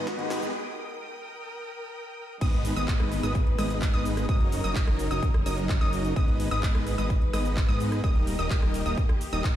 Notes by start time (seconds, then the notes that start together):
Already playing: G#1 G#3 B3 D#4 B4 D#5 G#5 D#6, riser
0.07 kick, snare, closed hi-hat, shaker
0.18 G#2 D#3 G#3 B3 F#4, closed hi-hat
0.30 snare, open hi-hat, shaker
0.42 G#1 G#3 B3 D#4 B4 D#5, closed hi-hat, shaker
0.54 A#4 G5
2.41 G#1 G#3 B3 D#4 B4 D#5 D#6, kick, closed hi-hat, crash, downlifter, shaker
2.53 closed hi-hat
2.65 open hi-hat, shaker
2.76 G#1 G#3 B3 D#4 B4 D#5 D#6, closed hi-hat, shaker
2.88 kick, clap, closed hi-hat, shaker
3.00 cross-stick, closed hi-hat
3.12 open hi-hat, shaker
3.23 G#1 G#3 B3 D#4 B4 D#5 D#6, closed hi-hat, shaker
3.35 kick, closed hi-hat, shaker
3.47 closed hi-hat
3.58 G#1 G#3 B3 D#4 B4 D#5 D#6, cross-stick, open hi-hat, shaker
3.70 closed hi-hat, shaker
3.82 kick, clap, closed hi-hat, shaker
3.94 G#1 G#3 B3 D#4 B4 D#5 D#6, closed hi-hat
4.05 open hi-hat, shaker
4.17 cross-stick, closed hi-hat, shaker
4.29 F#1 F#3 C#4 D#4 A#4 D#5 D#6, kick, closed hi-hat, shaker
4.41 closed hi-hat
4.52 open hi-hat, shaker
4.64 F#1 F#3 C#4 D#4 A#4 D#5 D#6, closed hi-hat, shaker
4.76 kick, clap, closed hi-hat, shaker
4.87 cross-stick, closed hi-hat
4.99 open hi-hat, shaker
5.11 F#1 F#3 C#4 D#4 A#4 D#5 D#6, closed hi-hat, shaker
5.23 kick, closed hi-hat, shaker
5.34 cross-stick, closed hi-hat
5.46 F#1 F#3 C#4 D#4 A#4 D#5 D#6, open hi-hat, shaker
5.58 closed hi-hat, shaker
5.69 kick, clap, closed hi-hat, shaker
5.81 F#1 F#3 C#4 D#4 A#4 D#5 D#6, closed hi-hat
5.93 open hi-hat, shaker
6.05 closed hi-hat, shaker
6.16 G#1 G#3 B3 D#4 B4 D#5 D#6, kick, closed hi-hat, shaker
6.28 closed hi-hat
6.40 open hi-hat, shaker
6.51 G#1 G#3 B3 D#4 B4 D#5 D#6, closed hi-hat, shaker
6.63 kick, clap, closed hi-hat, shaker
6.75 cross-stick, closed hi-hat
6.87 open hi-hat, shaker
6.98 G#1 G#3 B3 D#4 B4 D#5 D#6, closed hi-hat, shaker
7.10 kick, closed hi-hat, shaker
7.22 closed hi-hat
7.33 G#1 G#3 B3 D#4 B4 D#5 D#6, cross-stick, open hi-hat, shaker
7.45 closed hi-hat, shaker
7.57 kick, clap, closed hi-hat, shaker
7.69 G#2 G#3 B3 D#4 B4 D#5 D#6, closed hi-hat
7.80 open hi-hat, shaker
7.92 cross-stick, closed hi-hat, shaker
8.04 D#1 D#3 G3 A#3 G4 D#6, kick, closed hi-hat, shaker
8.16 closed hi-hat
8.27 open hi-hat, shaker
8.39 D#1 G3 A#3 D#4 A#4 D#5 D#6, closed hi-hat, shaker
8.50 kick, clap, closed hi-hat, shaker
8.62 cross-stick, closed hi-hat
8.74 open hi-hat, shaker
8.86 D#1 G3 A#3 D#4 A#4 D#5 D#6, closed hi-hat, shaker
8.98 kick, closed hi-hat, shaker
9.09 cross-stick, closed hi-hat
9.21 open hi-hat, shaker
9.33 D#1 G3 A#3 D#4 A#4 D#5 D#6, closed hi-hat, shaker
9.44 kick, clap, closed hi-hat, shaker